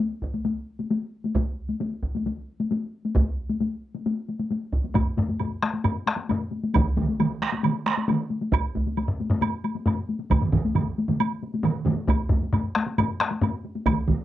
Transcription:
0.00 taiko high medium
0.22 taiko medium
0.34 taiko high soft
0.45 taiko high medium
0.79 taiko high soft
0.90 taiko high medium
1.24 taiko high soft
1.35 taiko medium
1.35 taiko high medium
1.69 taiko high soft
1.80 taiko high medium
2.03 taiko medium
2.15 taiko high medium
2.26 taiko high medium
2.60 taiko high soft
2.71 taiko high medium
3.05 taiko high soft
3.15 taiko medium
3.15 taiko high medium
3.50 taiko high soft
3.60 taiko high medium
3.95 taiko high soft
4.06 taiko high medium
4.28 taiko high soft
4.39 taiko high soft
4.51 taiko high soft
4.73 taiko medium
4.84 taiko high soft
4.95 taiko medium
4.95 taiko low-mid medium
4.95 taiko high medium
4.95 high woodblock soft
5.18 taiko medium
5.18 taiko low-mid medium
5.18 taiko high medium
5.29 taiko high soft
5.40 taiko low-mid medium
5.40 taiko high medium
5.40 high woodblock soft
5.62 taiko rim medium
5.62 taiko high medium
5.74 taiko high soft
5.84 taiko low-mid medium
5.84 taiko high medium
5.84 high woodblock soft
6.07 taiko rim medium
6.07 taiko high soft
6.07 high woodblock soft
6.17 taiko high medium
6.29 taiko low-mid medium
6.29 taiko high medium
6.29 high woodblock soft
6.51 taiko high soft
6.63 taiko high soft
6.74 taiko loud
6.74 taiko mid medium
6.74 taiko high medium
6.74 high woodblock soft
6.97 taiko medium
6.97 taiko mid medium
6.97 taiko high medium
7.09 taiko high soft
7.20 taiko mid medium
7.20 taiko high medium
7.20 high woodblock soft
7.42 taiko rim medium
7.42 taiko high soft
7.52 taiko high medium
7.63 taiko mid medium
7.63 taiko high medium
7.63 high woodblock soft
7.86 taiko rim medium
7.86 taiko high soft
7.86 high woodblock soft
7.97 taiko high medium
8.08 taiko mid medium
8.08 taiko high medium
8.08 high woodblock soft
8.30 taiko high soft
8.41 taiko high soft
8.52 taiko medium
8.52 taiko high medium
8.52 high woodblock medium
8.75 taiko medium
8.75 taiko high medium
8.87 taiko high soft
8.97 taiko high medium
8.97 high woodblock soft
9.08 taiko low-mid medium
9.20 taiko high medium
9.30 taiko low-mid medium
9.30 taiko high soft
9.41 taiko low-mid medium
9.41 taiko high medium
9.41 high woodblock medium
9.64 taiko high soft
9.64 high woodblock soft
9.75 taiko high soft
9.86 taiko low-mid medium
9.86 taiko high medium
9.86 high woodblock soft
10.09 taiko high soft
10.20 taiko high soft
10.31 taiko medium
10.31 taiko low-mid medium
10.31 taiko mid medium
10.31 taiko high medium
10.31 high woodblock soft
10.42 taiko low-mid medium
10.42 taiko mid medium
10.52 taiko medium
10.52 taiko low-mid medium
10.52 taiko mid medium
10.52 taiko high medium
10.65 taiko high medium
10.75 taiko low-mid medium
10.75 taiko mid medium
10.75 taiko high medium
10.75 high woodblock soft
10.98 taiko high soft
11.08 taiko low-mid medium
11.08 taiko mid medium
11.08 taiko high medium
11.20 taiko high medium
11.20 high woodblock soft
11.42 taiko high soft
11.54 taiko high medium
11.64 taiko low-mid medium
11.64 taiko mid medium
11.64 taiko high medium
11.64 high woodblock soft
11.86 taiko low-mid medium
11.86 taiko mid medium
11.86 taiko high soft
11.97 taiko high soft
12.07 taiko medium
12.07 taiko low-mid medium
12.07 taiko high medium
12.07 high woodblock soft
12.29 taiko medium
12.29 taiko low-mid medium
12.29 taiko high medium
12.43 taiko high soft
12.53 taiko low-mid medium
12.53 taiko high medium
12.53 high woodblock soft
12.75 taiko rim medium
12.75 taiko high medium
12.87 taiko high medium
12.98 taiko low-mid medium
12.98 taiko high medium
12.98 high woodblock soft
13.20 taiko rim medium
13.20 taiko high soft
13.20 high woodblock soft
13.31 taiko high soft
13.41 taiko low-mid loud
13.41 taiko high medium
13.41 high woodblock soft
13.65 taiko high soft
13.76 taiko high soft
13.86 taiko medium
13.86 taiko mid medium
13.86 taiko high medium
13.86 high woodblock medium
14.08 taiko medium
14.08 taiko mid medium
14.08 taiko high medium

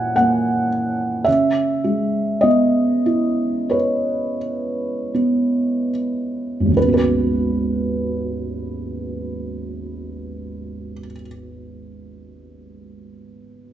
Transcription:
0.00 1.23 A#2 soft
0.00 0.14 A#3 soft
0.00 0.69 C#4 soft
0.00 1.24 E4 soft
0.00 0.16 F#5 medium
0.00 1.29 G#5 medium
0.16 1.24 A#3 soft
0.16 1.22 F#5 medium
1.24 6.70 C#3 soft
1.24 2.45 E5 medium
1.84 4.36 G#3 soft
2.41 5.11 B3 soft
2.41 3.74 D#5 medium
3.06 5.90 E4 soft
3.70 6.73 B4 soft
3.70 5.89 C#5 soft
5.14 6.73 B3 soft
6.60 10.93 G#1 soft
6.66 10.98 D#2 soft
6.72 11.04 C#3 soft
6.77 11.10 G#3 soft
6.77 6.92 B4 soft
6.83 11.16 B3 soft
6.89 11.21 F#4 soft
6.94 11.27 B4 soft

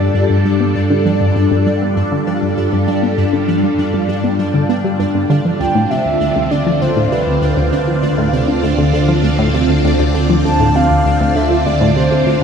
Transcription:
0.00 5.57 G2 medium
0.00 5.60 G3 medium
0.00 7.31 D4 medium
0.00 12.44 D4 medium
0.00 12.44 F4 medium
0.00 7.88 A4 medium
0.00 12.44 D5 medium
0.15 0.25 G2 medium
0.30 0.44 G2 loud
0.45 0.55 G3 medium
0.60 0.66 B3 medium
0.75 0.82 G2 medium
0.90 1.01 D3 medium
1.06 1.16 F3 medium
1.21 1.31 G2 medium
1.36 1.46 G2 medium
1.51 1.66 G2 loud
1.66 1.77 G3 medium
1.82 1.88 B3 medium
1.97 2.03 G2 medium
2.12 2.22 D3 loud
2.27 2.37 F3 medium
2.42 2.53 G2 medium
2.57 2.68 G2 medium
2.72 2.87 G2 medium
2.88 2.98 G3 medium
3.03 3.09 B3 medium
3.18 3.24 G2 medium
3.33 3.43 D3 medium
3.48 3.59 F3 medium
3.63 3.74 G2 medium
3.78 3.89 G2 medium
3.94 4.08 G2 loud
4.09 4.19 G3 medium
4.24 4.30 B3 medium
4.39 4.45 G2 medium
4.54 4.65 D3 loud
4.69 4.80 B3 medium
4.84 4.95 G3 medium
4.99 5.06 G2 loud
5.15 5.25 G2 medium
5.30 5.40 D3 loud
5.45 5.51 F3 medium
5.60 5.66 D2 medium
5.60 12.44 D2 medium
5.60 12.44 D3 medium
5.60 5.92 G5 loud
5.66 12.44 C4 medium
5.75 5.86 A2 medium
5.90 6.01 C3 medium
5.90 12.44 D5 medium
5.90 6.53 E5 loud
6.05 6.16 D2 medium
6.21 6.31 D2 medium
6.36 6.50 D2 loud
6.51 6.62 D3 medium
6.51 6.83 D5 medium
6.66 6.73 F3 medium
6.81 6.88 D2 medium
6.81 7.13 C5 medium
6.97 7.07 A2 medium
7.12 7.22 C3 medium
7.12 7.72 B4 medium
7.27 7.37 D2 medium
7.42 7.53 D2 medium
7.57 7.72 D2 medium
7.72 7.83 D3 medium
7.88 7.94 F3 medium
8.03 8.09 D2 medium
8.18 8.28 A2 medium
8.33 8.43 C3 medium
8.48 8.59 D2 medium
8.63 8.74 D2 medium
8.78 8.93 D2 loud
8.93 9.04 D3 medium
9.08 9.15 F3 medium
9.24 9.30 D2 medium
9.39 9.49 A2 loud
9.54 9.64 C3 medium
9.69 9.80 D2 medium
9.84 9.95 D2 medium
9.99 10.14 D2 loud
10.14 10.25 D3 medium
10.30 10.36 F3 medium
10.45 10.51 D2 medium
10.45 10.77 A5 loud
10.60 10.71 A2 loud
10.75 10.86 C3 medium
10.75 11.37 F5 loud
10.90 11.01 D2 medium
11.05 11.16 D2 medium
11.20 11.35 D2 loud
11.36 11.46 D3 medium
11.36 11.67 E5 medium
11.51 11.57 F3 medium
11.66 11.72 D2 medium
11.66 11.96 D5 medium
11.81 11.92 A2 loud
11.96 12.07 C3 medium
11.96 12.44 C5 medium
12.11 12.22 D2 medium
12.27 12.37 D2 medium

